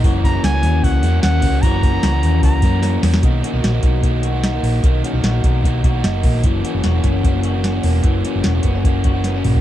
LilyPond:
<<
  \new Staff \with { instrumentName = "Trumpet" } { \time 4/4 \key b \major \tempo 4 = 150 r8 ais''8 gis''4 fis''4 fis''4 | ais''2 ais''4. r8 | r1 | r1 |
r1 | r1 | }
  \new Staff \with { instrumentName = "Clean electric guitar" } { \time 4/4 \key b \major <e fis'>8 cis'8 fis'8 cis'8 fis'8 ais8 cis'8 ais8 | <e fis'>8 cis'8 fis'8 cis'8 fis'8 ais8 cis'8 ais8 | dis8 cis'16 dis'16 fis'8 dis'8 ais8 fis'8 dis'8 ais8 | dis8 cis'16 dis'16 fis'8 dis'8 ais8 fis'8 dis'8 ais8 |
e8 cis'8 fis'8 cis'8 ais8 fis'8 cis'8 ais8 | e8 cis'8 fis'8 b16 cis'16 ais8 fis'8 b16 cis'16 ais8 | }
  \new Staff \with { instrumentName = "Overdriven electric guitar" } { \time 4/4 \key b \major <fis, cis e ais cis' fis'>8. <e ais cis' fis'>8 <e ais cis' fis'>4~ <e ais cis' fis'>16 <e ais cis' fis'>8 <e ais cis' fis'>8 <e ais cis' fis'>8 | <fis, cis e ais cis' fis'>8. <e ais cis' fis'>8 <e ais cis' fis'>4~ <e ais cis' fis'>16 <e ais cis' fis'>8 <e ais cis' fis'>8 <e ais cis' fis'>8 | <fis ais dis' fis'>8 <b, fis ais dis' fis'>8. <b, fis ais dis' fis'>8. <fis ais dis' fis'>8. <ais dis' fis'>8 <ais dis' fis'>8. | <fis ais dis' fis'>8 <b, fis ais dis' fis'>8. <b, fis ais dis' fis'>8. <fis ais dis' fis'>8. <ais dis' fis'>8 <ais dis' fis'>8. |
<e ais cis' fis'>8 <fis, cis e ais cis' fis'>8. <fis, cis e ais cis' fis'>8. <e ais cis' fis'>8. <e ais cis' fis'>8 <e ais cis' fis'>8. | <e ais cis' fis'>8 <fis, cis e ais cis' fis'>8. <fis, cis e ais cis' fis'>8. <e ais cis' fis'>8. <e ais cis' fis'>8 <e ais cis' fis'>8. | }
  \new Staff \with { instrumentName = "Fingered electric bass" } { \clef bass \time 4/4 \key b \major fis,,4 cis,8 dis,8 cis,8 e,8 dis,8 cis,8 | fis,,4 cis,8 dis,8 cis,8 fis,4 e,8 | b,,8 r16 b,,16 ais,,8 b,,2 ais,,8 | b,,8 r16 b,,16 ais,,8 b,,4. fis,,8 ais,,8 |
fis,,8 r16 fis,,16 e,,8 fis,,2 e,,8 | fis,,8 r16 fis,,16 e,,8 fis,,2 ais,,8 | }
  \new DrumStaff \with { instrumentName = "Drums" } \drummode { \time 4/4 <hho bd>8 <hho bd>8 <hho sn>8 <hho sn>8 <hho bd>8 hho8 <hho sn>8 <hho bd>8 | <hho bd>8 <hho bd>8 <hho sn>8 hho8 <hho bd>8 <hho bd>8 <hho sn>8 <hho sn>16 sn16 | <hh bd>8 hh8 <hh sn>8 <hh bd sn>8 <hh bd>8 hh8 <hh sn>8 hho8 | <hh bd>8 hh8 <hh sn>8 <hh bd>8 <hh bd>8 <hh bd>8 <hh sn>8 <hho bd>8 |
<hh bd>8 hh8 <hh sn>8 <hh bd sn>8 <hh bd>8 hh8 <hh sn>8 hho8 | <hh bd>8 hh8 <hh sn>8 <hh bd>8 <hh bd>8 <hh bd>8 <hh sn>8 <hho toml>16 tomfh16 | }
>>